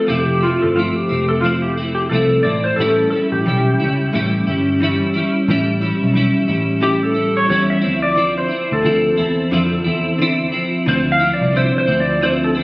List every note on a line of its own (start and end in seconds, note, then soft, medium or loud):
0.07 0.53 F1 loud
0.07 0.42 F3 medium
0.07 0.42 A3 medium
0.07 0.41 C4 medium
0.07 0.39 E4 medium
0.07 0.43 G4 medium
0.40 0.76 A3 soft
0.40 0.76 C4 soft
0.40 0.75 E4 medium
0.40 0.64 F4 medium
0.62 0.90 G1 medium
0.62 0.76 A4 medium
0.76 1.10 F3 medium
0.76 1.11 A3 medium
0.76 1.09 C4 medium
0.76 1.08 E4 medium
0.76 0.81 F4 medium
0.95 1.31 G4 medium
1.09 2.07 F1 medium
1.09 1.43 A3 soft
1.09 1.44 C4 soft
1.09 1.43 E4 soft
1.29 1.43 A4 medium
1.41 1.77 F3 medium
1.41 1.78 A3 medium
1.41 1.47 F4 medium
1.45 1.78 C4 medium
1.45 1.76 E4 medium
1.62 1.71 G4 medium
1.77 2.11 A3 soft
1.77 2.12 C4 soft
1.77 2.11 E4 medium
1.95 2.00 G4 medium
2.09 2.38 C2 medium
2.09 2.45 F3 medium
2.09 2.45 A3 medium
2.09 2.45 C4 medium
2.09 2.45 A4 medium
2.14 2.43 E4 medium
2.43 2.72 A1 medium
2.43 2.79 C4 soft
2.43 2.78 E4 medium
2.43 2.65 D5 medium
2.48 2.80 A3 soft
2.64 2.78 C5 medium
2.76 3.06 A1 loud
2.76 3.13 A2 medium
2.76 3.13 E3 medium
2.76 3.09 A4 loud
2.80 3.13 G3 medium
2.80 3.14 C#4 medium
2.80 3.12 E4 medium
3.10 3.46 E4 medium
3.10 3.16 A4 medium
3.15 3.45 G3 soft
3.15 3.47 C#4 soft
3.32 3.43 A1 medium
3.32 4.97 G4 medium
3.46 3.73 B1 medium
3.46 3.80 E3 medium
3.46 3.80 G3 medium
3.46 3.80 C#4 medium
3.46 3.79 E4 medium
3.80 4.07 C#2 medium
3.80 4.13 G3 soft
3.80 4.14 C#4 soft
3.80 4.13 E4 soft
4.13 4.41 A1 loud
4.13 4.47 A2 medium
4.13 4.47 E3 medium
4.13 4.48 G3 medium
4.13 4.47 C#4 medium
4.13 4.46 E4 medium
4.47 5.01 G1 medium
4.47 4.80 G3 soft
4.47 4.81 C#4 soft
4.47 4.81 E4 medium
4.80 5.14 E3 medium
4.80 5.15 G3 medium
4.80 5.15 C#4 medium
4.80 5.13 E4 medium
5.14 5.49 G3 medium
5.14 5.49 C#4 soft
5.14 5.48 E4 medium
5.48 5.91 A1 loud
5.48 5.82 A2 medium
5.48 5.83 E3 medium
5.48 5.83 G3 medium
5.48 5.82 C#4 medium
5.48 5.80 E4 medium
5.81 6.14 G3 soft
5.81 6.15 C#4 medium
5.81 6.15 E4 medium
6.02 6.29 B1 medium
6.14 6.48 E3 medium
6.14 6.49 G3 medium
6.14 6.48 C#4 medium
6.14 6.47 E4 medium
6.48 7.46 A1 medium
6.48 6.81 G3 soft
6.48 6.81 C#4 medium
6.48 6.82 E4 medium
6.81 7.16 A2 medium
6.81 7.16 E3 medium
6.81 7.16 G3 medium
6.81 7.15 C#4 medium
6.81 7.13 E4 medium
6.81 7.04 G4 medium
7.03 7.38 A4 medium
7.14 7.48 G3 soft
7.14 7.50 C#4 medium
7.14 7.49 E4 medium
7.37 7.49 C#5 medium
7.48 7.85 E2 medium
7.48 7.83 E3 medium
7.48 7.84 G3 medium
7.48 7.83 C#4 medium
7.48 7.69 C#5 medium
7.52 7.80 E4 medium
7.70 8.02 E5 medium
7.81 8.38 D2 loud
7.81 8.16 F3 soft
7.81 8.16 C4 soft
7.81 8.16 E4 medium
8.02 8.37 D5 loud
8.15 8.50 D3 medium
8.15 8.51 F3 medium
8.15 8.50 C4 medium
8.15 8.47 E4 medium
8.38 8.72 C5 medium
8.49 8.83 F3 soft
8.49 8.84 C4 medium
8.49 8.84 E4 medium
8.72 8.83 D2 medium
8.72 10.37 A4 medium
8.82 9.12 D2 medium
8.82 9.17 D3 medium
8.82 9.18 F3 medium
8.82 9.18 C4 medium
8.82 9.16 E4 medium
9.17 9.46 E2 medium
9.17 9.52 C4 soft
9.17 9.52 E4 medium
9.51 9.79 F2 loud
9.51 9.86 D3 medium
9.51 9.86 F3 medium
9.51 9.85 C4 medium
9.51 9.83 E4 medium
9.84 10.40 E2 medium
9.84 10.20 C4 medium
9.84 10.19 E4 medium
10.19 10.53 D3 medium
10.19 10.52 C4 medium
10.19 10.51 E4 medium
10.52 10.87 F3 soft
10.52 10.87 C4 medium
10.52 10.86 E4 medium
10.86 11.30 D2 loud
10.86 11.20 D3 medium
10.86 11.21 F3 medium
10.86 11.20 C4 medium
10.86 11.18 E4 medium
10.86 10.94 C5 loud
11.12 11.34 F5 medium
11.19 11.54 F3 soft
11.19 11.55 C4 medium
11.19 11.54 E4 medium
11.34 11.54 D5 medium
11.41 11.68 C2 medium
11.53 11.87 D3 medium
11.53 11.88 F3 medium
11.53 11.88 C4 medium
11.53 11.86 E4 medium
11.53 11.77 C5 medium
11.78 12.01 C5 medium
11.87 12.63 D2 medium
11.87 12.21 F3 soft
11.87 12.22 C4 soft
11.87 12.21 E4 medium
12.00 12.23 D5 medium
12.21 12.55 D3 medium
12.21 12.56 F3 medium
12.21 12.56 C4 medium
12.21 12.54 E4 medium
12.21 12.29 C5 medium
12.44 12.50 A4 medium
12.55 12.63 F3 soft
12.55 12.63 C4 soft
12.55 12.63 E4 medium